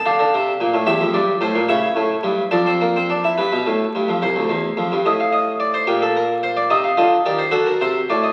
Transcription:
<<
  \new Staff \with { instrumentName = "Harpsichord" } { \time 6/8 \key g \minor \tempo 4. = 72 << { f''4. e''8 d''8 c''8 | cis''4. d''4. | b'4. c''4. | ees''16 f''16 ees''8 d''16 c''16 g'16 a'16 bes'8 c''16 d''16 |
ees''16 f''16 ees''8 d''16 c''16 a'16 bes'16 c''8 d''16 ees''16 | } \\ { d'4. g'4. | e'4. d'16 c'16 bes16 c'16 d'16 e'16 | r2. | r2. |
ees'8 f'8 g'8 fis'4. | } >> }
  \new Staff \with { instrumentName = "Harpsichord" } { \clef bass \time 6/8 \key g \minor d16 d16 c8 bes,16 a,16 e,16 f,16 g,8 a,16 bes,16 | cis8 a,8 g,8 f,4. | g,16 b,16 a,8 g,16 f,16 c,16 d,16 e,8 f,16 g,16 | a,4. bes,4. |
c8 d8 ees8 d8 c8 a,8 | }
>>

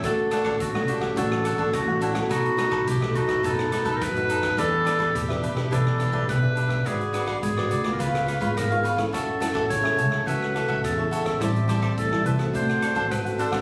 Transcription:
<<
  \new Staff \with { instrumentName = "Cavaquinho" } { \time 4/4 \key d \major \tempo 4 = 106 <d' a' cis'' fis''>8 <d' a' cis'' fis''>16 <d' a' cis'' fis''>16 r16 <a' cis'' fis''>16 <d' a' cis'' fis''>16 <a' cis'' fis''>16 <d' a' cis'' fis''>8 <d' a' cis'' fis''>16 <d' a' cis'' fis''>16 r16 <a' cis'' fis''>16 <d' a' cis'' fis''>16 <a' cis'' fis''>16 | <dis' a' b' dis''>8 <dis' a' b' dis''>16 <dis' a' b' dis''>16 r16 <a' b' dis''>16 <dis' a' b' dis''>16 <a' b' dis''>16 <dis' a' b' dis''>8 <dis' a' b' dis''>16 <dis' a' b' dis''>16 r16 <a' b' dis''>16 <dis' a' b' dis''>16 <a' b' dis''>16 | <d' g' b' e''>8 <d' g' b' e''>16 <d' g' b' e''>16 r16 <g' b' e''>16 <d' g' b' e''>16 <g' b' e''>16 <d' g' b' e''>8 <d' g' b' e''>16 <d' g' b' e''>16 r16 <g' b' e''>16 <d' g' b' e''>16 <g' b' e''>16 | <fis' gis' b' d''>8 <fis' gis' b' d''>16 <fis' gis' b' d''>16 r16 <gis' b' d''>16 <fis' gis' b' d''>16 <gis' b' d''>16 <eis' b' cis'' eis''>8 <eis' b' cis'' eis''>16 <eis' b' cis'' eis''>16 r16 <b' cis'' eis''>16 <eis' b' cis'' eis''>16 <b' cis'' eis''>16 |
<fis' a' cis'' e''>8 <fis' a' cis'' e''>16 <fis' a' cis'' e''>16 r16 <a' cis'' e''>16 <fis' a' cis'' e''>16 <a' cis'' e''>16 <fis' a' cis'' e''>8 <fis' a' cis'' e''>16 <fis' a' cis'' e''>16 r16 <a' cis'' e''>16 <fis' a' cis'' e''>16 <a' cis'' e''>16 | <g' c'' e'' a''>8 <g' c'' e'' a''>16 <g' c'' e'' a''>16 r16 <c'' e'' a''>16 <g' c'' e'' a''>16 <c'' e'' a''>16 <d' a' c'' fis''>8 <d' a' c'' fis''>16 <d' a' c'' fis''>16 r16 <a' c'' fis''>16 <d' a' c'' fis''>16 <a' c'' fis''>16 | }
  \new Staff \with { instrumentName = "Clarinet" } { \time 4/4 \key d \major a'4 fis'8 g'8 a'4 fis'8 e'8 | fis'4 g'8 fis'8 a'8.~ a'32 bes'32 b'4 | a'4 g'4 a'4 b'4 | gis'4 gis'8.~ gis'32 bes'32 b'4 bes'8 r8 |
a'4 cis''4 b'4 a'8.~ a'32 a'32 | g'4 a'8 b'8 c''4 b'8 a'8 | }
  \new Staff \with { instrumentName = "Nylon-string guitar" } { \time 4/4 \key d \major << { <a cis' fis'>8 <a cis' fis'>8. <a cis' fis'>8. <a cis' fis'>8. <a cis' fis'>8 <a cis' fis'>8 <a ees' fis'>16~ | <a ees' fis'>8 <a dis' fis'>8 r16 <a dis' fis'>8. <a dis' fis'>16 r16 <a dis' fis'>8 r16 <a dis' fis'>8. | <d' g' b'>8 <d' g' b'>8. <d' g' b'>8 <d' g' b'>16 <d' g' b'>8 r16 <d' g' b'>8 <d' g' b'>8. | <d' fis' b'>16 r16 <d' fis' b'>8. <d' fis' b'>8 <gis b f'>4 <gis b eis'>8 <gis b eis'>8 <cis' e' a'>16~ |
<cis' e' a'>8 <cis' e' a'>8. <cis' e' a'>8. <cis' e' a'>8 <cis' e' a'>8 r16 <cis' e' a'>8. | <g c' e'>16 r16 <g c' e'>8. <g c' e'>8 <a c' fis'>4 <a c' fis'>8 <a c' fis'>8 <b d' fis'>16 | } \\ { d4 a,4 d4 a,4 | b,4 fis4 b,4 fis4 | e4 b,4 e4 b,4 | gis4 gis4 cis4 gis,4 |
fis4 cis4 fis4 cis4 | a,4 e4 d4 r4 | } >> }
  \new Staff \with { instrumentName = "Upright bass" } { \clef bass \time 4/4 \key d \major d,4 d,8 a,,8 a,,8. a,,16 a,,4 | b,,4 b,,8 fis,8 fis,8. fis,16 fis,4 | e,4 e,8 b,,8 b,,8. b,,16 b,,4 | gis,,4 gis,,8 d,8 cis,8. gis,,16 gis,,4 |
fis,4 fis,8 cis,8 cis,8. cis,16 e,4 | a,,4 a,,8 c,8 d,8. a,,16 gis,,4 | }
  \new DrumStaff \with { instrumentName = "Drums" } \drummode { \time 4/4 <hh bd ss>8 <hh ss>16 <bd ss>16 <hh bd>16 ss16 hh16 <bd ss>16 <hh bd>16 ss16 <hh ss>16 bd16 <hh bd ss>8 hh16 <hh bd ss>16 | <hh bd ss>16 hh16 <hh ss>16 <bd ss>16 <hh bd>16 ss16 hh16 <hh bd ss>16 <hh bd>16 <hh ss>16 <hh ss>16 <hh bd>16 <hh bd ss>16 hh16 hh16 <hh bd ss>16 | <hh bd ss>8 <hh ss>16 <bd ss>16 <hh bd>16 ss16 hh16 <bd ss>16 <hh bd>16 ss16 <hh ss>16 bd16 <hh bd ss>8 hh16 <hh bd ss>16 | <hh bd ss>16 hh16 <hh ss>16 <bd ss>16 <hh bd>16 ss16 hh16 <hh bd ss>16 <hh bd>16 <hh ss>16 <hh ss>16 <hh bd>16 <hh bd ss>16 hh16 hh16 <hh bd ss>16 |
<hh bd ss>8 <hh ss>16 <bd ss>16 <hh bd>16 ss16 hh16 <bd ss>16 <hh bd>16 ss16 <hh ss>16 bd16 <hh bd ss>8 hh16 <hh bd ss>16 | <hh bd ss>16 hh16 <hh ss>16 <bd ss>16 <hh bd>16 ss16 hh16 <hh bd ss>16 <hh bd>16 <hh ss>16 <hh ss>16 <hh bd>16 <hh bd ss>16 hh16 hh16 <hh bd ss>16 | }
>>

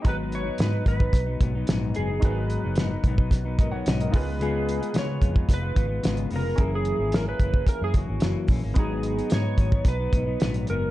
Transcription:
<<
  \new Staff \with { instrumentName = "Electric slide guitar" } { \time 4/4 \key gis \minor \tempo 4 = 110 b'8 cis''8 b'8 b'4. r8 gis'8~ | gis'4 r2. | gis'4 cis''4 b'4. ais'8~ | ais'16 gis'8. ais'16 b'8. ais'16 gis'16 fis'4 r8 |
gis'4 cis''4 b'4. ais'8 | }
  \new Staff \with { instrumentName = "Upright piano" } { \time 4/4 \key gis \minor << { r1 | r2 r8 <ais' dis''>16 <cis'' fis''>8 <ais' dis''>8 r16 | r1 | r1 |
r1 | } \\ { <dis' fis' b' ais''>1 | <dis' fis' ais' b'>2.~ <dis' fis' ais' b'>8 <dis' eis' gis' b'>8~ | <dis' eis' gis' b'>2.~ <dis' eis' gis' b'>8 r8 | <cis' e' gis' ais''>1 |
<b dis' fis' ais''>1 | } >> }
  \new Staff \with { instrumentName = "Clean electric guitar" } { \time 4/4 \key gis \minor <gis, fis b dis'>8. <fis b dis'>16 <gis, fis b dis'>16 <fis b dis'>16 <gis, fis b dis'>16 <fis b dis'>8 <fis b dis'>16 <gis, fis b dis'>16 <fis b dis'>16 <gis, fis b dis'>8 <gis, fis b dis'>16 <fis b dis'>16 | <gis, fis b dis'>8. <fis b dis'>16 <gis, fis b dis'>16 <fis b dis'>16 <gis, fis b dis'>16 <fis b dis'>8 <fis b dis'>16 <gis, fis b dis'>16 <fis b dis'>16 <gis, fis b dis'>8 <cis gis b eis'>8 | <cis gis b eis'>8. <gis b eis'>16 <cis gis b eis'>16 <gis b eis'>16 <cis gis b eis'>16 <gis b eis'>8 <gis b eis'>16 <cis gis b eis'>16 <gis b eis'>16 <cis gis b eis'>8 <cis gis b eis'>16 <gis b eis'>16 | <fis, e ais cis'>8. <e ais cis'>16 <fis, e ais cis'>16 <e ais cis'>16 <fis, e ais cis'>16 <e ais cis'>8 <e ais cis'>16 <fis, e ais cis'>16 <e ais cis'>16 <fis, e ais cis'>8 <fis, e ais cis'>16 <e ais cis'>16 |
<gis, fis b dis'>8. <fis b dis'>16 <gis, fis b dis'>16 <fis b dis'>16 <gis, fis b dis'>16 <fis b dis'>8 <fis b dis'>16 <gis, fis b dis'>16 <fis b dis'>16 <gis, fis b dis'>8 <gis, fis b dis'>8 | }
  \new Staff \with { instrumentName = "Fingered electric bass" } { \clef bass \time 4/4 \key gis \minor gis,,4 gis,8 gis,,8 b,,8 b,,8 ais,,8 fis,,8 | gis,,8. fis,,8. b,,4. b,,8 cis,8~ | cis,4 cis8 eis,8 eis,,8 gis,,8 gis,,8 eis,,8 | fis,,8. gis,,8. fis,,8 r16 fis,16 fis,,16 gis,,16 fis,,16 r16 ais,,16 gis,,16 |
gis,,4 gis,8 gis,,8 b,,8 b,,8 ais,,8 fis,,8 | }
  \new DrumStaff \with { instrumentName = "Drums" } \drummode { \time 4/4 <hh bd>8 hh8 <hh sn>8 <hh bd>16 bd16 <hh bd sn>8 <hh bd>8 <hh sn>8 hh8 | <hh bd>8 hh8 <hh sn>8 <hh bd>16 bd16 <hh bd sn>8 <hh bd>8 <hh sn>16 hh16 <hho bd>8 | hh8 hh16 hh16 <hh sn>8 <hh bd>16 bd16 <hh bd sn>8 <hh bd>8 <hh sn>16 hh16 hho8 | <hh bd>8 hh8 <hh sn>8 <hh bd>16 bd16 <hh bd>8 <hh bd>8 <hh sn>8 <hho bd>8 |
<hh bd>8 hh16 hh16 <hh sn>8 <hh bd>16 bd16 <hh bd sn>8 <hh bd>8 <hh sn>16 hh16 hh8 | }
>>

